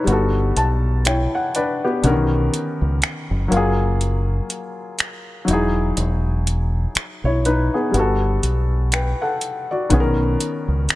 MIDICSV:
0, 0, Header, 1, 5, 480
1, 0, Start_track
1, 0, Tempo, 983607
1, 994, Time_signature, 4, 2, 24, 8
1, 5345, End_track
2, 0, Start_track
2, 0, Title_t, "Grand piano"
2, 0, Program_c, 0, 0
2, 0, Control_c, 0, 64, 127
2, 0, Note_on_c, 0, 63, 50
2, 0, Note_on_c, 0, 71, 58
2, 19, Note_on_c, 0, 55, 66
2, 33, Note_on_c, 0, 59, 62
2, 40, Control_c, 0, 64, 0
2, 47, Note_on_c, 0, 66, 63
2, 60, Note_on_c, 0, 69, 69
2, 129, Control_c, 0, 64, 127
2, 164, Note_off_c, 0, 71, 0
2, 166, Note_off_c, 0, 63, 0
2, 279, Note_on_c, 0, 81, 71
2, 500, Note_off_c, 0, 81, 0
2, 504, Note_off_c, 0, 59, 0
2, 511, Note_off_c, 0, 66, 0
2, 518, Note_off_c, 0, 69, 0
2, 519, Note_on_c, 0, 73, 62
2, 520, Note_on_c, 0, 79, 70
2, 522, Note_on_c, 0, 64, 51
2, 647, Note_off_c, 0, 79, 0
2, 658, Note_on_c, 0, 78, 62
2, 745, Note_off_c, 0, 73, 0
2, 746, Note_off_c, 0, 64, 0
2, 750, Note_off_c, 0, 78, 0
2, 760, Note_on_c, 0, 71, 66
2, 760, Note_on_c, 0, 74, 69
2, 763, Note_on_c, 0, 62, 54
2, 890, Note_off_c, 0, 71, 0
2, 891, Note_off_c, 0, 62, 0
2, 900, Note_on_c, 0, 67, 66
2, 903, Note_on_c, 0, 59, 55
2, 967, Note_off_c, 0, 55, 0
2, 980, Note_off_c, 0, 74, 0
2, 989, Note_off_c, 0, 59, 0
2, 989, Note_on_c, 0, 50, 58
2, 997, Note_on_c, 0, 59, 69
2, 1000, Control_c, 0, 64, 0
2, 1003, Note_on_c, 0, 61, 68
2, 1010, Note_on_c, 0, 70, 83
2, 1021, Note_on_c, 0, 51, 73
2, 1029, Note_off_c, 0, 50, 0
2, 1097, Control_c, 0, 64, 127
2, 1125, Note_off_c, 0, 67, 0
2, 1699, Note_on_c, 0, 54, 74
2, 1712, Note_on_c, 0, 58, 70
2, 1715, Note_off_c, 0, 59, 0
2, 1719, Note_off_c, 0, 61, 0
2, 1721, Control_c, 0, 64, 0
2, 1722, Note_off_c, 0, 70, 0
2, 1726, Note_on_c, 0, 65, 67
2, 1728, Note_off_c, 0, 51, 0
2, 1740, Note_on_c, 0, 68, 78
2, 1804, Control_c, 0, 64, 127
2, 2647, Note_off_c, 0, 54, 0
2, 2654, Note_off_c, 0, 58, 0
2, 2658, Note_on_c, 0, 54, 71
2, 2661, Note_off_c, 0, 65, 0
2, 2668, Note_off_c, 0, 68, 0
2, 2672, Note_on_c, 0, 63, 61
2, 2680, Control_c, 0, 64, 0
2, 2685, Note_on_c, 0, 64, 67
2, 2699, Note_on_c, 0, 68, 72
2, 2761, Control_c, 0, 64, 127
2, 3143, Note_off_c, 0, 63, 0
2, 3150, Note_off_c, 0, 64, 0
2, 3157, Note_off_c, 0, 68, 0
2, 3538, Note_on_c, 0, 73, 60
2, 3541, Note_on_c, 0, 64, 54
2, 3631, Note_off_c, 0, 73, 0
2, 3633, Note_off_c, 0, 64, 0
2, 3639, Note_on_c, 0, 71, 72
2, 3641, Note_on_c, 0, 63, 58
2, 3769, Note_off_c, 0, 71, 0
2, 3770, Note_off_c, 0, 63, 0
2, 3778, Note_on_c, 0, 68, 59
2, 3781, Note_on_c, 0, 59, 53
2, 3847, Note_off_c, 0, 54, 0
2, 3860, Note_on_c, 0, 55, 65
2, 3866, Note_off_c, 0, 59, 0
2, 3873, Note_on_c, 0, 59, 62
2, 3880, Control_c, 0, 64, 0
2, 3887, Note_on_c, 0, 66, 62
2, 3900, Note_on_c, 0, 69, 75
2, 3968, Control_c, 0, 64, 127
2, 4004, Note_off_c, 0, 68, 0
2, 4351, Note_off_c, 0, 66, 0
2, 4358, Note_off_c, 0, 69, 0
2, 4359, Note_on_c, 0, 79, 61
2, 4362, Note_on_c, 0, 71, 54
2, 4489, Note_off_c, 0, 79, 0
2, 4490, Note_off_c, 0, 71, 0
2, 4497, Note_on_c, 0, 78, 65
2, 4500, Note_on_c, 0, 69, 54
2, 4723, Note_off_c, 0, 78, 0
2, 4725, Note_off_c, 0, 69, 0
2, 4738, Note_on_c, 0, 74, 60
2, 4741, Note_on_c, 0, 66, 54
2, 4808, Note_off_c, 0, 55, 0
2, 4814, Note_off_c, 0, 59, 0
2, 4829, Note_on_c, 0, 51, 72
2, 4834, Note_on_c, 0, 59, 67
2, 4841, Control_c, 0, 64, 0
2, 4841, Note_on_c, 0, 61, 69
2, 4849, Note_on_c, 0, 68, 62
2, 4878, Note_off_c, 0, 68, 0
2, 4880, Note_on_c, 0, 70, 82
2, 4939, Control_c, 0, 64, 127
2, 4964, Note_off_c, 0, 74, 0
2, 4965, Note_off_c, 0, 66, 0
2, 5345, Note_off_c, 0, 51, 0
2, 5345, Note_off_c, 0, 59, 0
2, 5345, Note_off_c, 0, 61, 0
2, 5345, Note_off_c, 0, 70, 0
2, 5345, End_track
3, 0, Start_track
3, 0, Title_t, "Fingered electric bass"
3, 0, Program_c, 1, 33
3, 34, Note_on_c, 1, 31, 108
3, 249, Note_off_c, 1, 31, 0
3, 274, Note_on_c, 1, 35, 89
3, 613, Note_off_c, 1, 35, 0
3, 994, Note_on_c, 1, 35, 105
3, 1208, Note_off_c, 1, 35, 0
3, 1373, Note_on_c, 1, 37, 77
3, 1463, Note_off_c, 1, 37, 0
3, 1613, Note_on_c, 1, 30, 89
3, 1703, Note_off_c, 1, 30, 0
3, 1714, Note_on_c, 1, 30, 97
3, 2143, Note_off_c, 1, 30, 0
3, 2674, Note_on_c, 1, 28, 82
3, 2888, Note_off_c, 1, 28, 0
3, 2913, Note_on_c, 1, 28, 104
3, 3343, Note_off_c, 1, 28, 0
3, 3532, Note_on_c, 1, 35, 73
3, 3747, Note_off_c, 1, 35, 0
3, 3873, Note_on_c, 1, 31, 107
3, 4088, Note_off_c, 1, 31, 0
3, 4113, Note_on_c, 1, 35, 88
3, 4453, Note_off_c, 1, 35, 0
3, 4834, Note_on_c, 1, 35, 106
3, 5049, Note_off_c, 1, 35, 0
3, 5211, Note_on_c, 1, 37, 75
3, 5302, Note_off_c, 1, 37, 0
3, 5345, End_track
4, 0, Start_track
4, 0, Title_t, "Muted fingered electric bass strokes"
4, 1474, Note_on_c, 9, 29, 47
4, 1523, Note_off_c, 9, 29, 0
4, 3394, Note_on_c, 9, 29, 47
4, 3442, Note_off_c, 9, 29, 0
4, 5314, Note_on_c, 9, 29, 49
4, 5345, Note_off_c, 9, 29, 0
4, 5345, End_track
5, 0, Start_track
5, 0, Title_t, "Drums"
5, 36, Note_on_c, 9, 42, 52
5, 85, Note_off_c, 9, 42, 0
5, 276, Note_on_c, 9, 42, 62
5, 325, Note_off_c, 9, 42, 0
5, 513, Note_on_c, 9, 42, 65
5, 522, Note_on_c, 9, 26, 104
5, 562, Note_off_c, 9, 42, 0
5, 571, Note_off_c, 9, 26, 0
5, 755, Note_on_c, 9, 42, 67
5, 804, Note_off_c, 9, 42, 0
5, 993, Note_on_c, 9, 42, 60
5, 1042, Note_off_c, 9, 42, 0
5, 1237, Note_on_c, 9, 42, 65
5, 1286, Note_off_c, 9, 42, 0
5, 1473, Note_on_c, 9, 42, 58
5, 1481, Note_on_c, 9, 26, 111
5, 1522, Note_off_c, 9, 42, 0
5, 1530, Note_off_c, 9, 26, 0
5, 1717, Note_on_c, 9, 42, 57
5, 1766, Note_off_c, 9, 42, 0
5, 1956, Note_on_c, 9, 42, 54
5, 2005, Note_off_c, 9, 42, 0
5, 2196, Note_on_c, 9, 42, 63
5, 2245, Note_off_c, 9, 42, 0
5, 2433, Note_on_c, 9, 42, 67
5, 2442, Note_on_c, 9, 26, 100
5, 2482, Note_off_c, 9, 42, 0
5, 2490, Note_off_c, 9, 26, 0
5, 2675, Note_on_c, 9, 42, 71
5, 2723, Note_off_c, 9, 42, 0
5, 2913, Note_on_c, 9, 42, 64
5, 2962, Note_off_c, 9, 42, 0
5, 3158, Note_on_c, 9, 42, 71
5, 3207, Note_off_c, 9, 42, 0
5, 3393, Note_on_c, 9, 42, 60
5, 3400, Note_on_c, 9, 26, 106
5, 3441, Note_off_c, 9, 42, 0
5, 3449, Note_off_c, 9, 26, 0
5, 3637, Note_on_c, 9, 42, 59
5, 3685, Note_off_c, 9, 42, 0
5, 3876, Note_on_c, 9, 42, 55
5, 3924, Note_off_c, 9, 42, 0
5, 4115, Note_on_c, 9, 42, 63
5, 4164, Note_off_c, 9, 42, 0
5, 4353, Note_on_c, 9, 42, 68
5, 4361, Note_on_c, 9, 26, 110
5, 4402, Note_off_c, 9, 42, 0
5, 4410, Note_off_c, 9, 26, 0
5, 4594, Note_on_c, 9, 42, 70
5, 4642, Note_off_c, 9, 42, 0
5, 4833, Note_on_c, 9, 42, 64
5, 4834, Note_on_c, 9, 36, 100
5, 4882, Note_off_c, 9, 42, 0
5, 4883, Note_off_c, 9, 36, 0
5, 5078, Note_on_c, 9, 42, 65
5, 5126, Note_off_c, 9, 42, 0
5, 5313, Note_on_c, 9, 42, 60
5, 5321, Note_on_c, 9, 26, 104
5, 5345, Note_off_c, 9, 26, 0
5, 5345, Note_off_c, 9, 42, 0
5, 5345, End_track
0, 0, End_of_file